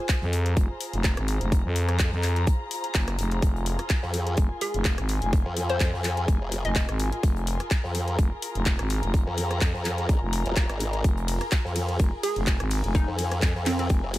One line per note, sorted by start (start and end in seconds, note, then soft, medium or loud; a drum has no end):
0.00 14.18 F4 medium
0.00 14.18 G#4 medium
0.00 4.11 C5 medium
0.00 0.39 G#5 medium
0.09 kick loud
0.09 snare loud
0.09 clap loud
0.09 closed hi-hat medium
0.21 0.55 F2 loud
0.21 snare soft
0.33 4.20 A#5 medium
0.33 closed hi-hat medium
0.33 open hi-hat loud
0.46 closed hi-hat medium
0.57 0.68 F1 medium
0.57 kick loud
0.57 closed hi-hat medium
0.81 closed hi-hat medium
0.81 open hi-hat loud
0.93 1.15 F1 loud
0.93 closed hi-hat medium
1.04 kick loud
1.04 snare loud
1.04 clap loud
1.04 closed hi-hat medium
1.17 1.39 G#1 medium
1.17 cross-stick medium
1.17 closed hi-hat medium
1.28 closed hi-hat medium
1.28 open hi-hat loud
1.41 1.63 F1 loud
1.41 closed hi-hat medium
1.52 kick loud
1.52 closed hi-hat medium
1.65 1.98 F2 loud
1.76 closed hi-hat medium
1.76 open hi-hat loud
1.89 cross-stick medium
1.89 closed hi-hat medium
1.99 2.10 F2 medium
1.99 kick loud
1.99 snare loud
1.99 clap loud
1.99 closed hi-hat medium
1.99 closed hi-hat loud
2.12 2.45 F2 loud
2.12 snare soft
2.23 clap medium
2.23 closed hi-hat medium
2.23 open hi-hat loud
2.36 closed hi-hat medium
2.47 kick loud
2.47 closed hi-hat medium
2.71 closed hi-hat medium
2.71 open hi-hat loud
2.84 closed hi-hat medium
2.94 3.17 F#1 medium
2.94 kick loud
2.94 snare loud
2.94 clap loud
2.94 closed hi-hat medium
3.08 cross-stick medium
3.08 closed hi-hat medium
3.19 3.41 F1 loud
3.19 closed hi-hat medium
3.19 open hi-hat loud
3.31 closed hi-hat medium
3.42 3.77 F1 loud
3.42 kick loud
3.42 closed hi-hat medium
3.56 closed hi-hat soft
3.66 closed hi-hat medium
3.66 open hi-hat loud
3.79 cross-stick medium
3.79 closed hi-hat medium
3.90 kick loud
3.90 snare loud
3.90 clap loud
3.90 closed hi-hat medium
3.96 14.18 A#4 medium
4.02 4.36 F2 loud
4.02 snare soft
4.14 closed hi-hat medium
4.14 open hi-hat loud
4.18 8.01 G#5 medium
4.27 closed hi-hat medium
4.37 4.48 F1 medium
4.37 kick loud
4.37 closed hi-hat medium
4.61 4.78 G#4 loud
4.61 closed hi-hat medium
4.61 open hi-hat loud
4.74 4.96 F1 loud
4.74 closed hi-hat medium
4.85 kick loud
4.85 snare loud
4.85 clap loud
4.85 closed hi-hat medium
4.98 5.20 G#1 loud
4.98 cross-stick medium
4.98 closed hi-hat medium
5.09 closed hi-hat medium
5.09 open hi-hat loud
5.22 5.44 F1 loud
5.22 closed hi-hat medium
5.33 kick loud
5.33 closed hi-hat medium
5.46 5.79 F2 loud
5.57 closed hi-hat medium
5.57 open hi-hat loud
5.70 5.77 C5 loud
5.70 cross-stick medium
5.70 closed hi-hat medium
5.80 5.91 F2 medium
5.80 5.89 C5 medium
5.80 kick loud
5.80 snare loud
5.80 clap loud
5.80 closed hi-hat medium
5.93 6.26 F2 loud
5.93 snare soft
6.04 clap medium
6.04 closed hi-hat medium
6.04 open hi-hat loud
6.17 closed hi-hat medium
6.28 6.39 F1 loud
6.28 kick loud
6.28 closed hi-hat medium
6.41 6.63 F1 loud
6.52 closed hi-hat medium
6.52 open hi-hat loud
6.65 6.87 F1 loud
6.65 7.00 D#5 medium
6.65 closed hi-hat medium
6.76 kick loud
6.76 snare loud
6.76 clap loud
6.76 closed hi-hat medium
6.89 7.10 G#1 loud
6.89 cross-stick medium
6.89 closed hi-hat medium
6.99 closed hi-hat medium
6.99 open hi-hat loud
7.12 closed hi-hat medium
7.23 7.58 F1 loud
7.23 kick loud
7.23 closed hi-hat medium
7.36 closed hi-hat soft
7.47 closed hi-hat medium
7.47 open hi-hat loud
7.60 cross-stick medium
7.60 closed hi-hat medium
7.71 kick loud
7.71 snare loud
7.71 clap loud
7.71 closed hi-hat medium
7.84 8.17 F2 loud
7.84 snare soft
7.95 11.82 A#5 medium
7.95 closed hi-hat medium
7.95 open hi-hat loud
8.08 closed hi-hat soft
8.19 8.29 F1 medium
8.19 kick loud
8.19 closed hi-hat medium
8.42 closed hi-hat medium
8.42 open hi-hat loud
8.55 8.77 F1 loud
8.55 closed hi-hat medium
8.66 kick loud
8.66 snare loud
8.66 clap loud
8.66 closed hi-hat medium
8.79 9.01 G#1 loud
8.79 cross-stick medium
8.79 closed hi-hat medium
8.90 closed hi-hat medium
8.90 open hi-hat loud
9.03 9.25 F1 loud
9.03 closed hi-hat medium
9.14 kick loud
9.14 closed hi-hat medium
9.27 9.60 F2 loud
9.37 closed hi-hat medium
9.37 open hi-hat loud
9.51 cross-stick medium
9.51 closed hi-hat soft
9.61 9.72 F2 loud
9.61 kick loud
9.61 snare loud
9.61 clap loud
9.61 closed hi-hat medium
9.74 10.07 F2 loud
9.74 snare soft
9.85 clap medium
9.85 closed hi-hat medium
9.85 open hi-hat loud
9.98 closed hi-hat soft
10.09 10.20 G#1 loud
10.09 kick loud
10.09 closed hi-hat medium
10.22 10.44 F1 loud
10.33 closed hi-hat medium
10.33 open hi-hat loud
10.46 10.68 F1 medium
10.46 closed hi-hat soft
10.56 kick loud
10.56 snare loud
10.56 clap loud
10.56 closed hi-hat loud
10.56 closed hi-hat medium
10.70 11.03 G#1 loud
10.70 cross-stick medium
10.70 closed hi-hat medium
10.80 closed hi-hat medium
10.80 open hi-hat loud
10.93 closed hi-hat soft
11.04 11.39 F1 loud
11.04 kick loud
11.04 closed hi-hat loud
11.04 closed hi-hat medium
11.18 closed hi-hat soft
11.28 closed hi-hat medium
11.28 open hi-hat loud
11.28 ride medium
11.41 cross-stick medium
11.41 closed hi-hat soft
11.52 kick loud
11.52 snare loud
11.52 clap loud
11.52 closed hi-hat medium
11.65 11.98 F2 loud
11.65 snare soft
11.76 14.18 G#5 medium
11.76 closed hi-hat medium
11.76 open hi-hat loud
11.76 ride medium
11.89 closed hi-hat soft
11.99 12.10 F1 loud
11.99 kick loud
11.99 closed hi-hat loud
11.99 closed hi-hat medium
12.23 12.40 G#4 loud
12.23 closed hi-hat medium
12.23 open hi-hat loud
12.23 ride medium
12.36 12.58 F1 loud
12.36 closed hi-hat soft
12.47 kick loud
12.47 snare loud
12.47 clap loud
12.47 closed hi-hat medium
12.60 12.82 G#1 loud
12.60 cross-stick medium
12.60 closed hi-hat medium
12.71 closed hi-hat medium
12.71 open hi-hat loud
12.71 ride medium
12.84 13.06 F1 loud
12.84 closed hi-hat medium
12.95 13.11 D#4 medium
12.95 kick loud
12.95 closed hi-hat medium
13.08 13.41 F2 loud
13.18 closed hi-hat medium
13.18 open hi-hat loud
13.18 ride medium
13.32 cross-stick medium
13.32 closed hi-hat medium
13.42 13.53 F2 medium
13.42 kick loud
13.42 snare loud
13.42 clap loud
13.42 closed hi-hat medium
13.55 13.88 F2 loud
13.55 snare soft
13.66 13.75 C4 medium
13.66 clap medium
13.66 closed hi-hat medium
13.66 open hi-hat loud
13.66 ride medium
13.79 13.86 C4 medium
13.79 closed hi-hat medium
13.89 14.01 F1 medium
13.89 kick loud
13.89 closed hi-hat medium
14.03 14.18 F1 loud
14.14 closed hi-hat medium
14.14 open hi-hat loud
14.14 ride medium